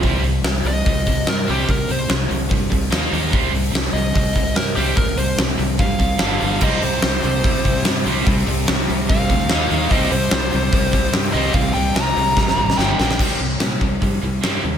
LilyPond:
<<
  \new Staff \with { instrumentName = "Lead electric guitar" } { \time 4/4 \key c \minor \tempo 4 = 146 r4. ees''4. bes'8 g'8 | bes'8 c''8 r2. | r4. ees''4. bes'8 g'8 | bes'8 c''8 r4 f''2 |
ees''8 c''8 c''2 r4 | r2 f''2 | ees''8 c''8 c''2 r8 ees''8 | f''8 g''8 bes''2 g''8 g''8 |
r1 | }
  \new Staff \with { instrumentName = "Distorted electric guitar" } { \clef bass \time 4/4 \key c \minor <c g c'>8 <c g>8 <c g>8 <c g>8 <c g>8 <c g>8 <c g>8 <c g c'>8 | <c g>8 <c g>8 <c g>8 <c g>8 <c g>8 <c g>8 <ees bes ees'>8 <ees bes ees'>8 | <c g c'>8 <c g>8 <c g>8 <c g>8 <c g>8 <c g>8 <c g>8 <c g c'>8 | <c g>8 <c g>8 <c g>8 <c g>8 <c g>8 <c g>8 <g, d g>8 <g, d g>8 |
<c g c'>8 <c g>8 <c g>8 <c g>8 <c g>8 <c g>8 <c g>8 <c g c'>8 | <c g>8 <c g>8 <c g>8 <c g>8 <c g>8 <c g>8 <ees bes ees'>8 <ees bes ees'>8 | <c g c'>8 <c g>8 <c g>8 <c g>8 <c g>8 <c g>8 <c g>8 <c g c'>8 | <c g>8 <c g>8 <c g>8 <c g>8 <c g>8 <c g>8 <g, d g>8 <g, d g>8 |
<c g c'>8 <c g>8 <c g>8 <c g>8 <c g>8 <c g>8 <c g c'>8 <c g>8 | }
  \new Staff \with { instrumentName = "Overdriven electric guitar" } { \clef bass \time 4/4 \key c \minor <c g c'>8 <c g>8 <c g>8 <c g>8 <c g>8 <c g>8 <c g>8 <c g c'>8 | <c g>8 <c g>8 <c g>8 <c g>8 <c g>8 <c g>8 <ees bes ees'>8 <ees bes ees'>8 | <c g c'>8 <c g>8 <c g>8 <c g>8 <c g>8 <c g>8 <c g>8 <c g c'>8 | <c g>8 <c g>8 <c g>8 <c g>8 <c g>8 <c g>8 <g, d g>8 <g, d g>8 |
<c g c'>8 <c g>8 <c g>8 <c g>8 <c g>8 <c g>8 <c g>8 <c g c'>8 | <c g>8 <c g>8 <c g>8 <c g>8 <c g>8 <c g>8 <ees bes ees'>8 <ees bes ees'>8 | <c g c'>8 <c g>8 <c g>8 <c g>8 <c g>8 <c g>8 <c g>8 <c g c'>8 | <c g>8 <c g>8 <c g>8 <c g>8 <c g>8 <c g>8 <g, d g>8 <g, d g>8 |
<c g c'>8 <c g>8 <c g>8 <c g>8 <c g>8 <c g>8 <c g c'>8 <c g>8 | }
  \new Staff \with { instrumentName = "Overdriven electric guitar" } { \clef bass \time 4/4 \key c \minor r1 | r1 | r1 | r1 |
<c g c'>2 <c g c'>2 | <c g c'>2 <c g c'>4 <ees bes ees'>4 | <c g c'>2 <c g c'>2 | <c g c'>2 <c g c'>4 <g, d g>4 |
r1 | }
  \new Staff \with { instrumentName = "Fingered electric bass" } { \clef bass \time 4/4 \key c \minor c,8 c,8 c,8 c,8 c,4 g,8 c,8 | c,8 c,8 c,8 c,8 g,8 c,8 ees,8 ees,8 | c,8 c,8 c,8 c,8 c,4 g,8 c,8 | c,8 c,8 c,8 c,8 g,8 c,8 g,,8 g,,8 |
c,8 c,8 c,8 c,8 c,4 g,8 c,8 | c,8 c,8 c,8 c,8 g,8 d,8 ees,8 ees,8 | c,8 c,8 c,8 c,8 c,4 g,8 c,8 | c,8 c,8 c,8 c,8 g,8 aes,,8 g,,8 bes,,8 |
c,8 c,8 bes,8 c,8 g,8 c,8 g,8 ees,8 | }
  \new DrumStaff \with { instrumentName = "Drums" } \drummode { \time 4/4 <hho bd>8 hho8 <hho sn>8 hho8 <hho bd>8 <hho bd>8 <hho sn>8 hho8 | <hho bd>8 hho8 <hho sn>8 hho8 <hho bd>8 <hho bd>8 sn8 hho8 | <hho bd>8 hho8 sn8 hho8 <hho bd>8 <hho bd>8 <hho sn>8 hho8 | <hho bd>8 hho8 sn8 hho8 <hho bd>8 <hho bd>8 <hho sn>8 hho8 |
<cymc bd>8 hho8 <hho sn>8 hho8 <hho bd>8 <hho bd>8 <hho sn>8 hho8 | <hho bd>8 hho8 <hho sn>8 hho8 <hho bd>8 <hho bd>8 sn8 hho8 | <hho bd>8 hho8 <hho sn>8 hho8 <hho bd>8 <hho bd>8 <hho sn>8 hho8 | <hho bd>8 hho8 <hho sn>8 hho8 <bd sn>16 sn8 sn16 sn8 sn16 sn16 |
<cymc bd>4 <hho sn>8 bd8 <hho bd>4 <hho sn>4 | }
>>